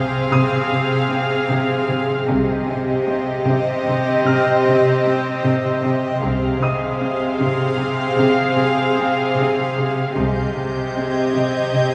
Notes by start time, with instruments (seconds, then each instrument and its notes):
Already playing: cello section C3, ambient pad C4 G#4 F5, viola section C4 G#4, violin section F5 D#6 G6
0.32 cello section C3, grand piano D#6
0.72 cello section C3
1.12 cello section C4
1.51 cello section C3
1.91 cello section C3
2.29 double bass section C2, cello section C3, viola section C4 G4, ambient pad G4 C5 D#5, violin section D#5
2.69 cello section C3
3.09 cello section C4
3.48 cello section C3
3.88 cello section C3
4.26 cello section C3, grand piano F6
4.67 cello section C3
5.06 cello section C4
5.45 cello section C3
5.84 cello section C3
6.22 double bass section C2, cello section C3, viola section C4 G#4, ambient pad G#4 C5 F5, violin section F5
6.63 cello section C3, grand piano D#5 D#6
7.03 cello section C4
7.41 cello section C3
7.81 cello section C3
8.20 cello section C3
8.60 cello section C3
8.99 cello section C4
9.39 cello section C3
9.78 cello section C3
10.16 double bass section C2, cello section C3, viola section C4 G4, ambient pad G4 C5 D#5, violin section D#5 G6
10.57 cello section C3
10.96 cello section C4, violin section G#6
11.36 cello section C3
11.76 cello section C3